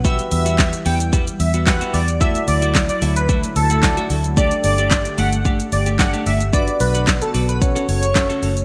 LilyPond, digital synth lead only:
\new Staff \with { instrumentName = "Digital synth lead" } { \time 4/4 \key d \major \tempo 4 = 111 e''8 e''8. r16 g''16 r8. e''16 r16 fis''16 r16 d''16 r16 | e''8 d''8 r16 d''16 r16 b'16 r8 a'8. r8. | d''8 d''8. r16 fis''16 r8. d''16 r16 fis''16 r16 e''16 r16 | d''8 b'8 r16 a'16 r16 b'16 r8 cis''8. r8. | }